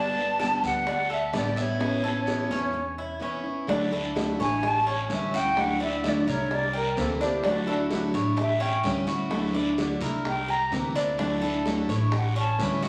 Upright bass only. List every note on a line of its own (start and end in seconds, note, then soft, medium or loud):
0.00 0.58 G1 medium
0.64 1.30 D2 medium
1.33 2.45 A1 medium
2.50 3.18 E2 medium
3.68 4.35 D2 medium
4.39 5.06 A1 medium
5.10 6.20 D2 medium
6.27 6.93 C2 medium
6.97 8.08 D2 medium
8.14 8.80 A1 medium
8.84 9.95 D2 medium
10.01 10.67 C2 medium
10.71 11.82 D2 medium
11.88 12.55 A1 loud
12.59 12.89 D2 loud